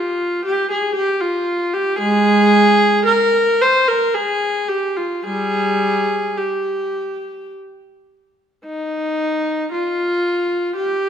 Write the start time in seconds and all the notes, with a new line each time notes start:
Already playing: F4
0.45 G4
0.71 G#4
0.95 G4
1.21 F4
1.74 G4
1.99 G#3 G#4
3.05 A#4
3.62 C5
3.88 A#4
4.14 G#4
4.68 G4
4.96 F4
5.25 G3 G#4
6.38 G4
8.66 D#4
9.72 F4
10.76 G4